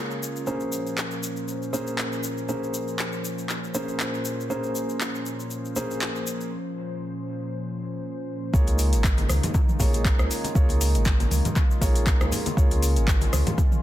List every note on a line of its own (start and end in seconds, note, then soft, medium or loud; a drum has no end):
0.00 0.43 C#3 medium
0.00 0.43 G#3 medium
0.00 0.44 A#3 medium
0.00 8.50 C#4 medium
0.00 0.43 F4 medium
0.00 0.44 F4 medium
0.00 0.44 G#4 medium
0.00 0.44 C#5 loud
0.11 shaker soft
0.23 shaker loud
0.36 shaker soft
0.47 8.50 A#2 medium
0.47 8.50 F3 medium
0.47 1.70 A#3 medium
0.47 1.70 C#4 medium
0.47 1.70 G#4 medium
0.47 1.70 C5 medium
0.47 8.50 C5 medium
0.47 shaker medium
0.60 shaker soft
0.72 shaker medium
0.87 shaker soft
0.98 clap medium
0.98 shaker medium
1.11 shaker soft
1.23 shaker medium
1.36 shaker soft
1.48 shaker medium
1.62 shaker soft
1.73 2.46 A#3 medium
1.73 2.46 C#4 medium
1.73 2.46 G#4 medium
1.73 2.46 C5 loud
1.73 shaker medium
1.87 shaker soft
1.98 clap loud
1.98 shaker soft
2.12 shaker soft
2.23 shaker medium
2.38 shaker soft
2.49 3.72 A#3 medium
2.49 3.72 C#4 medium
2.49 3.72 G#4 medium
2.49 3.72 C5 medium
2.49 shaker medium
2.63 shaker soft
2.74 shaker medium
2.88 shaker soft
2.99 clap medium
2.99 shaker soft
3.13 shaker soft
3.25 shaker medium
3.38 shaker soft
3.49 clap medium
3.49 shaker soft
3.64 shaker soft
3.74 4.48 A#3 medium
3.74 4.48 C#4 medium
3.74 4.48 G#4 medium
3.74 4.48 C5 loud
3.74 shaker medium
3.88 shaker soft
4.00 clap loud
4.00 shaker soft
4.14 shaker soft
4.25 shaker medium
4.40 shaker soft
4.50 5.74 A#3 medium
4.50 5.74 C#4 medium
4.50 5.74 G#4 medium
4.50 5.74 C5 medium
4.50 shaker soft
4.63 shaker soft
4.75 shaker medium
4.89 shaker soft
5.01 clap loud
5.01 shaker soft
5.15 shaker soft
5.26 shaker medium
5.40 shaker soft
5.50 shaker soft
5.65 shaker soft
5.76 6.49 A#3 medium
5.76 6.49 C#4 medium
5.76 6.49 G#4 medium
5.76 6.49 C5 loud
5.76 shaker medium
5.91 shaker soft
6.01 clap loud
6.01 shaker soft
6.16 shaker soft
6.27 shaker loud
6.41 shaker soft
8.54 8.94 C#2 loud
8.54 13.82 C#3 medium
8.54 13.82 G#3 medium
8.54 9.77 A#3 medium
8.54 12.53 D#4 medium
8.54 9.77 F4 medium
8.54 13.82 F4 medium
8.54 9.77 G#4 medium
8.54 9.77 C#5 medium
8.54 kick loud
8.54 shaker medium
8.67 closed hi-hat soft
8.67 muted conga medium
8.67 shaker soft
8.79 open hi-hat medium
8.79 shaker medium
8.93 9.24 G#1 medium
8.93 closed hi-hat medium
8.93 shaker soft
9.04 kick loud
9.04 clap loud
9.04 muted conga soft
9.04 high conga medium
9.04 shaker medium
9.17 closed hi-hat soft
9.17 high conga medium
9.17 shaker soft
9.29 9.39 C#2 loud
9.29 cross-stick medium
9.29 open hi-hat medium
9.29 mid tom medium
9.29 muted conga medium
9.29 shaker medium
9.43 closed hi-hat medium
9.43 mid tom medium
9.43 low conga loud
9.43 shaker soft
9.54 kick loud
9.54 muted conga soft
9.54 high conga loud
9.54 shaker medium
9.69 mid tom medium
9.69 shaker soft
9.80 10.12 A#1 medium
9.80 10.53 A#3 loud
9.80 10.53 F4 medium
9.80 10.53 G#4 medium
9.80 10.53 C#5 loud
9.80 kick medium
9.80 open hi-hat loud
9.80 muted conga medium
9.80 low conga loud
9.80 shaker medium
9.93 closed hi-hat medium
9.93 high conga medium
9.93 shaker soft
10.05 kick loud
10.05 clap loud
10.05 shaker soft
10.19 10.27 C#2 medium
10.19 cross-stick loud
10.19 muted conga soft
10.19 shaker soft
10.31 open hi-hat medium
10.31 shaker medium
10.44 closed hi-hat medium
10.44 muted conga medium
10.44 shaker soft
10.55 10.96 C#2 loud
10.55 11.79 A#3 medium
10.55 11.79 F4 medium
10.55 11.79 G#4 medium
10.55 11.79 C#5 loud
10.55 kick loud
10.55 shaker medium
10.69 closed hi-hat soft
10.69 muted conga medium
10.69 shaker soft
10.81 open hi-hat loud
10.81 shaker loud
10.94 11.25 G#1 medium
10.94 closed hi-hat medium
10.94 shaker soft
11.05 kick loud
11.05 clap loud
11.05 muted conga soft
11.05 high conga medium
11.05 shaker medium
11.20 closed hi-hat soft
11.20 high conga medium
11.20 shaker soft
11.31 11.41 C#2 medium
11.31 open hi-hat medium
11.31 mid tom medium
11.31 muted conga medium
11.31 shaker medium
11.45 closed hi-hat medium
11.45 mid tom medium
11.45 low conga medium
11.45 shaker soft
11.56 kick loud
11.56 clap medium
11.56 muted conga soft
11.56 high conga loud
11.56 shaker medium
11.71 shaker soft
11.81 12.14 A#1 medium
11.81 12.54 A#3 loud
11.81 12.54 F4 medium
11.81 12.54 G#4 medium
11.81 12.54 C#5 loud
11.81 kick medium
11.81 open hi-hat medium
11.81 muted conga medium
11.81 shaker medium
11.95 closed hi-hat medium
11.95 shaker soft
12.06 kick loud
12.06 clap loud
12.06 high conga medium
12.06 shaker medium
12.20 12.28 C#2 medium
12.20 cross-stick loud
12.20 muted conga soft
12.20 high conga loud
12.20 shaker soft
12.32 open hi-hat medium
12.32 low conga loud
12.32 shaker loud
12.46 closed hi-hat medium
12.46 muted conga medium
12.46 high conga medium
12.46 shaker soft
12.57 12.98 C#2 loud
12.57 13.80 A#3 medium
12.57 13.82 C#4 medium
12.57 13.80 F4 medium
12.57 13.80 G#4 medium
12.57 13.80 C#5 loud
12.57 kick loud
12.57 shaker medium
12.71 closed hi-hat soft
12.71 muted conga medium
12.71 shaker soft
12.82 open hi-hat medium
12.82 shaker loud
12.96 13.27 G#1 medium
12.96 closed hi-hat medium
12.96 shaker soft
13.08 kick loud
13.08 clap medium
13.08 muted conga soft
13.08 high conga medium
13.08 shaker medium
13.21 closed hi-hat soft
13.21 high conga loud
13.21 shaker soft
13.33 13.42 C#2 loud
13.33 cross-stick medium
13.33 open hi-hat medium
13.33 mid tom medium
13.33 muted conga soft
13.33 shaker loud
13.47 closed hi-hat medium
13.47 mid tom medium
13.47 low conga loud
13.47 shaker soft
13.58 kick loud
13.58 muted conga soft
13.58 high conga loud
13.58 shaker medium
13.72 mid tom medium
13.72 shaker soft